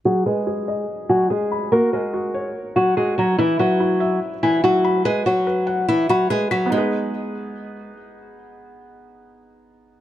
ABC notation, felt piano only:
X:1
M:4/4
L:1/8
Q:1/4=144
K:G#m
V:1 name="Felt piano"
G B G d2 g G b | F A F c2 f F a | E B E e2 g E b | B c B f2 b B b' |
[B,DGB]8- | [B,DGB]8 |]